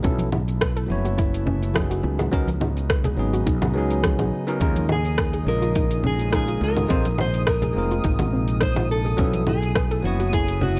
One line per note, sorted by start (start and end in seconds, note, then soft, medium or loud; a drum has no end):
0.03 0.86 B1 loud
0.03 6.86 C#3 medium
0.03 0.28 F#3 medium
0.03 2.02 A3 medium
0.03 0.28 B3 medium
0.03 2.02 B3 medium
0.03 0.18 C#4 medium
0.03 0.28 C#4 medium
0.03 0.29 E4 medium
0.03 2.02 E4 medium
0.03 0.29 A4 medium
0.03 kick loud
0.03 closed hi-hat medium
0.03 shaker medium
0.18 closed hi-hat soft
0.18 high conga medium
0.18 shaker soft
0.32 0.46 E4 medium
0.32 low conga medium
0.48 closed hi-hat soft
0.48 shaker medium
0.61 0.75 B4 medium
0.61 kick loud
0.61 cross-stick loud
0.61 closed hi-hat medium
0.61 shaker medium
0.76 0.89 A4 medium
0.76 closed hi-hat soft
0.76 shaker soft
0.87 2.00 F#1 medium
0.87 1.71 F#3 medium
0.87 1.72 B3 medium
0.87 1.72 C#4 medium
0.87 1.73 E4 medium
0.87 high conga medium
0.92 1.73 C#5 medium
1.05 1.17 F#4 medium
1.05 closed hi-hat soft
1.05 shaker medium
1.18 1.32 E4 loud
1.18 kick loud
1.18 closed hi-hat medium
1.18 shaker medium
1.34 closed hi-hat soft
1.34 shaker soft
1.46 1.61 C#4 medium
1.46 low conga medium
1.63 closed hi-hat soft
1.63 high bongo soft
1.63 shaker medium
1.74 2.29 F#3 medium
1.74 2.29 B3 medium
1.74 2.30 C#4 medium
1.74 2.30 D#4 medium
1.74 1.90 E4 medium
1.74 2.30 G#4 medium
1.74 kick loud
1.74 cross-stick loud
1.74 closed hi-hat medium
1.74 high conga loud
1.74 shaker medium
1.90 1.98 F#4 medium
1.90 closed hi-hat soft
1.90 shaker soft
2.03 2.28 C#2 medium
2.03 4.59 F#3 medium
2.03 4.59 B3 medium
2.03 9.15 D#4 loud
2.03 high bongo medium
2.19 2.31 G#4 medium
2.19 low conga medium
2.19 shaker medium
2.31 3.15 C#2 medium
2.31 2.48 F#3 medium
2.31 2.48 B3 medium
2.31 2.46 C#4 loud
2.31 2.49 C#4 medium
2.31 2.49 D#4 medium
2.31 2.49 A#4 loud
2.31 kick loud
2.31 closed hi-hat medium
2.31 shaker medium
2.48 closed hi-hat soft
2.48 high conga loud
2.48 shaker soft
2.60 2.75 D#4 medium
2.60 high bongo soft
2.60 low conga medium
2.77 closed hi-hat soft
2.77 shaker medium
2.90 3.04 B4 medium
2.90 kick loud
2.90 cross-stick loud
2.90 closed hi-hat medium
2.90 shaker medium
3.04 3.18 G#4 medium
3.04 closed hi-hat soft
3.04 low conga medium
3.04 shaker soft
3.17 3.42 G#1 medium
3.17 3.72 F#3 medium
3.17 3.72 B3 medium
3.17 3.73 C#4 medium
3.17 3.73 D#4 medium
3.17 3.73 G#4 medium
3.33 3.45 F#4 medium
3.33 closed hi-hat soft
3.33 shaker medium
3.46 3.75 B1 loud
3.46 3.61 D#4 loud
3.46 kick loud
3.46 closed hi-hat medium
3.46 shaker medium
3.62 closed hi-hat soft
3.62 low conga medium
3.62 shaker soft
3.73 4.19 C#2 medium
3.73 4.43 F#3 medium
3.73 4.44 B3 medium
3.73 4.44 C#4 medium
3.73 4.45 D#4 medium
3.73 3.84 G#4 medium
3.78 4.46 G#4 loud
3.90 closed hi-hat soft
3.90 shaker medium
4.04 4.18 G#4 medium
4.04 kick loud
4.04 cross-stick loud
4.04 closed hi-hat medium
4.04 high conga loud
4.04 shaker medium
4.19 4.30 B1 medium
4.19 4.32 G#4 medium
4.19 closed hi-hat soft
4.19 low conga medium
4.19 shaker soft
4.47 4.57 F#3 medium
4.47 4.58 B3 medium
4.47 4.58 C#4 medium
4.47 4.60 D#4 medium
4.47 4.58 D#4 medium
4.47 4.59 A#4 loud
4.47 closed hi-hat soft
4.47 high bongo soft
4.47 shaker medium
4.60 5.43 D#2 medium
4.60 6.87 F3 medium
4.60 4.85 G#3 medium
4.60 9.14 G#3 medium
4.60 4.85 C#4 medium
4.60 4.75 C#4 medium
4.60 4.85 D#4 medium
4.60 4.86 F4 medium
4.60 4.86 A#4 medium
4.60 10.80 D#6 medium
4.60 kick loud
4.60 closed hi-hat medium
4.60 shaker medium
4.76 closed hi-hat soft
4.76 high conga medium
4.76 shaker soft
4.89 5.04 D#4 medium
4.89 5.48 G#4 medium
4.89 low conga medium
5.05 closed hi-hat soft
5.05 shaker medium
5.18 5.32 A#4 medium
5.18 kick loud
5.18 cross-stick loud
5.18 closed hi-hat medium
5.18 shaker medium
5.33 5.46 G#4 medium
5.33 closed hi-hat soft
5.33 shaker soft
5.44 6.57 A#1 medium
5.44 6.28 G#3 medium
5.44 6.29 C#4 medium
5.44 6.29 D#4 medium
5.44 high conga medium
5.48 6.30 F4 medium
5.48 6.01 A#4 loud
5.48 6.30 D#5 medium
5.62 5.74 F4 medium
5.62 closed hi-hat soft
5.62 shaker medium
5.75 5.90 D#4 loud
5.75 kick loud
5.75 closed hi-hat medium
5.75 shaker medium
5.91 closed hi-hat soft
5.91 shaker soft
6.04 6.18 C#4 medium
6.04 6.34 G#4 medium
6.04 low conga medium
6.19 closed hi-hat soft
6.19 high bongo soft
6.19 shaker medium
6.31 6.86 G#3 medium
6.31 6.86 C#4 medium
6.31 6.86 D#4 medium
6.31 6.48 D#4 medium
6.31 6.87 F4 medium
6.31 6.63 G#4 medium
6.31 6.87 A#4 medium
6.31 kick loud
6.31 cross-stick medium
6.31 closed hi-hat medium
6.31 high conga medium
6.31 shaker medium
6.48 6.55 F4 medium
6.48 closed hi-hat soft
6.48 shaker soft
6.61 6.85 C#2 medium
6.61 7.16 A#4 loud
6.61 high bongo medium
6.77 6.89 G#4 medium
6.77 low conga medium
6.77 shaker medium
6.88 7.72 A#1 loud
6.88 9.16 C3 medium
6.88 7.05 G#3 medium
6.88 9.16 A#3 medium
6.88 7.06 C4 medium
6.88 7.04 C4 loud
6.88 7.06 D#4 medium
6.88 7.06 F4 medium
6.88 7.07 C5 loud
6.88 kick loud
6.88 closed hi-hat medium
6.88 shaker medium
7.05 closed hi-hat soft
7.05 high conga medium
7.05 shaker soft
7.18 7.33 D#4 medium
7.18 7.46 C5 loud
7.18 high bongo soft
7.18 low conga medium
7.34 closed hi-hat soft
7.34 shaker medium
7.47 7.61 A#4 medium
7.47 8.01 A#4 medium
7.47 kick loud
7.47 cross-stick medium
7.47 closed hi-hat medium
7.47 shaker medium
7.62 7.75 G#4 medium
7.62 closed hi-hat soft
7.62 low conga medium
7.62 shaker soft
7.73 8.00 F1 medium
7.73 9.14 G#3 medium
7.73 9.15 C4 medium
7.73 9.15 D#4 medium
7.73 9.16 F4 medium
7.78 9.17 A#4 medium
7.91 8.03 F4 medium
7.91 closed hi-hat soft
7.91 shaker medium
8.04 8.33 G#1 medium
8.04 8.18 D#4 loud
8.04 kick loud
8.04 closed hi-hat medium
8.04 shaker medium
8.19 closed hi-hat soft
8.19 low conga medium
8.19 shaker soft
8.33 9.15 A#1 medium
8.33 8.47 C4 medium
8.48 closed hi-hat soft
8.48 shaker medium
8.61 8.76 D#4 medium
8.61 8.91 C5 loud
8.61 kick loud
8.61 cross-stick medium
8.61 closed hi-hat medium
8.61 high conga medium
8.61 shaker medium
8.76 8.84 F4 medium
8.76 closed hi-hat soft
8.76 low conga medium
8.76 shaker soft
8.91 9.44 A4 loud
9.05 9.17 G#4 medium
9.05 high bongo soft
9.05 shaker medium
9.17 10.01 B1 medium
9.17 10.80 C#3 medium
9.17 9.42 F#3 medium
9.17 10.80 A3 medium
9.17 9.43 B3 medium
9.17 10.80 B3 medium
9.17 9.43 C#4 medium
9.17 9.32 C#4 medium
9.17 10.80 E4 medium
9.17 9.43 E4 medium
9.17 9.43 A4 medium
9.17 kick loud
9.17 closed hi-hat medium
9.17 shaker medium
9.33 closed hi-hat soft
9.33 high conga medium
9.33 shaker soft
9.47 9.61 E4 medium
9.47 10.05 G#4 loud
9.47 low conga medium
9.62 closed hi-hat soft
9.62 shaker medium
9.75 9.89 B4 medium
9.75 kick loud
9.75 cross-stick medium
9.75 closed hi-hat medium
9.75 shaker medium
9.91 10.03 A4 medium
9.91 closed hi-hat soft
9.91 shaker soft
10.02 10.80 F#1 medium
10.02 10.80 F#3 medium
10.02 10.80 B3 medium
10.02 10.80 C#4 medium
10.02 10.80 E4 medium
10.02 10.33 F#4 medium
10.02 high conga medium
10.07 10.80 C#5 medium
10.20 10.31 F#4 medium
10.20 closed hi-hat soft
10.20 shaker medium
10.33 10.47 E4 loud
10.33 10.62 G#4 loud
10.33 kick medium
10.33 closed hi-hat medium
10.33 shaker medium
10.48 closed hi-hat soft
10.48 shaker soft
10.61 10.75 C#4 medium
10.61 10.80 F#4 medium
10.61 low conga medium